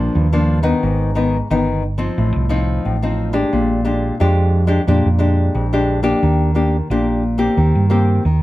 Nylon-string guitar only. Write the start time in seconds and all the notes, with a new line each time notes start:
Already playing: G2 F3 A#3 D4
0.15 G2
0.33 F3 A#3 D4
0.63 D#3 B3 D#4
0.83 G#2
1.15 D#3 B3 D#4
1.50 D#3 B3 D#4
1.98 F3 C4 D#4
2.18 A2
2.49 F3 C4 D#4
2.85 A2
3.02 F3 C4 D#4
3.33 G#3 D4 G4
3.53 A#2
3.85 G#3 D4 G4
4.20 F2 G#3 D4 G4
4.67 G#3 D4 G4
4.87 A#2 G#3 D4 G4
5.19 G#3 D4 G4
5.55 F2
5.73 G#3 D4 G4
6.03 A#3 D4 G4
6.23 D#3
6.55 A#3 D4 G4
6.91 A#2 A#3 D4 G4
7.38 A#3 C4 G4
7.57 D#3
7.90 A#3 C4 G4
8.26 D#3